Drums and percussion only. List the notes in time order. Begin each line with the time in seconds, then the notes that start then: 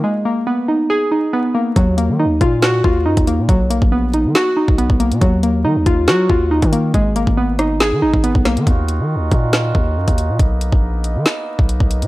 1.76 kick, closed hi-hat
1.98 closed hi-hat
2.41 kick, closed hi-hat
2.62 snare, closed hi-hat
2.84 kick
3.17 kick, closed hi-hat
3.27 closed hi-hat
3.49 kick, closed hi-hat
3.71 closed hi-hat
3.82 kick
4.13 closed hi-hat
4.35 snare, closed hi-hat
4.68 kick
4.78 closed hi-hat
4.90 kick
5.00 closed hi-hat
5.12 closed hi-hat
5.22 kick, closed hi-hat
5.43 closed hi-hat
5.86 kick, closed hi-hat
6.08 snare, closed hi-hat
6.29 kick
6.62 kick, closed hi-hat
6.73 closed hi-hat
6.94 kick, closed hi-hat
7.16 closed hi-hat
7.27 kick
7.59 cross-stick, closed hi-hat
7.80 snare, closed hi-hat
8.14 kick
8.24 closed hi-hat
8.35 kick
8.45 cross-stick, snare, closed hi-hat
8.57 closed hi-hat
8.67 kick, closed hi-hat
8.89 closed hi-hat
9.31 kick, closed hi-hat
9.53 snare, closed hi-hat
9.75 kick
10.08 kick, closed hi-hat
10.18 closed hi-hat
10.39 kick, closed hi-hat
10.61 closed hi-hat
10.72 kick
11.04 closed hi-hat
11.26 snare, closed hi-hat
11.59 kick
11.69 closed hi-hat
11.80 kick
11.91 closed hi-hat
12.02 closed hi-hat